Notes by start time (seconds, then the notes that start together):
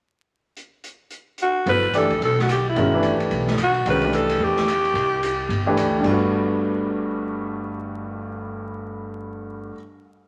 0.57 closed hi-hat
0.84 closed hi-hat
1.11 closed hi-hat
1.38 closed hi-hat
1.42 F#4
1.66 G1 F#3 B3 E4 A4 B4 C5, ride
1.83 ride
1.93 F#1 E3 A3 D4 G4 A4 D5, snare, hi-hat pedal, ride
2.10 kick, ride
2.21 B1 A4, ride
2.39 F#4, snare
2.49 G4, cross-stick, hi-hat pedal, ride
2.69 E4
2.76 G1 D#3 G#3 C#4 F#4 A#4, ride
2.94 E3 A3 D4 G4 B4
3.03 hi-hat pedal, ride
3.19 muted upright bass stroke, ride
3.30 B1, ride
3.47 snare
3.58 B1, cross-stick, hi-hat pedal, ride
3.63 F#4
3.74 ride
3.85 C2 D#3 G#3 C#4 F#4 A#4, ride
3.90 B4
4.01 E3 A3 D4 G4 B4, ride
4.13 A4, hi-hat pedal, ride
4.29 ride
4.39 E2
4.44 G4
4.56 snare
4.68 cross-stick, hi-hat pedal, ride
4.85 ride
4.94 C2, ride
5.23 hi-hat pedal, ride
5.49 G1, ride
5.66 E3 A3 D4 G4 B4
5.76 D2, cross-stick, hi-hat pedal, ride
5.99 G2 G3
6.04 G1 A3, kick, crash
6.08 F#4 B4
6.21 cymbal swell